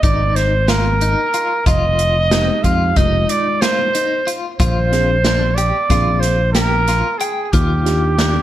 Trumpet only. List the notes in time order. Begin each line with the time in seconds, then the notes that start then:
0.03 D5
0.36 C5
0.69 A#4
1.66 D#5
2.63 F5
2.97 D#5
3.29 D5
3.61 C5
4.58 C5
5.55 D5
6.20 C5
6.52 A#4
7.18 G#4
7.51 G4